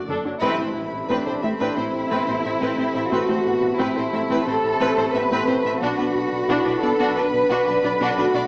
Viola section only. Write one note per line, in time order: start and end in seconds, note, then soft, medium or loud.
0.09 0.24 D4 soft
0.09 0.25 A4 soft
0.25 0.32 F#3 soft
0.25 0.33 D4 soft
0.42 0.58 C4 medium
0.59 0.66 C4 soft
1.10 1.26 C4 medium
1.27 1.34 C4 soft
1.44 1.50 C4 soft
1.60 1.76 C4 medium
1.77 1.84 C4 soft
2.11 2.27 C4 soft
2.28 2.35 C4 soft
2.44 2.51 C4 soft
2.61 2.77 C4 medium
2.78 2.85 C4 soft
2.95 3.02 C4 medium
3.12 3.27 C4 medium
3.29 3.35 C4 soft
3.79 3.95 C4 medium
3.96 4.03 C4 soft
4.13 4.20 C4 soft
4.30 4.46 C4 medium
4.47 4.54 C4 soft
4.80 4.96 C4 medium
4.97 5.04 C4 soft
5.14 5.21 C4 soft
5.31 5.47 C4 medium
5.48 5.55 C4 soft
5.66 5.73 C4 medium
5.83 5.98 D4 medium
6.00 6.06 D4 soft
6.50 6.65 D4 medium
6.66 6.73 D4 soft
6.83 6.90 D4 soft
7.00 7.15 D4 medium
7.17 7.23 D4 medium
7.50 7.65 D4 medium
7.66 7.73 D4 medium
7.83 7.90 D4 medium
8.00 8.16 D4 medium
8.18 8.25 D4 medium
8.34 8.41 D4 medium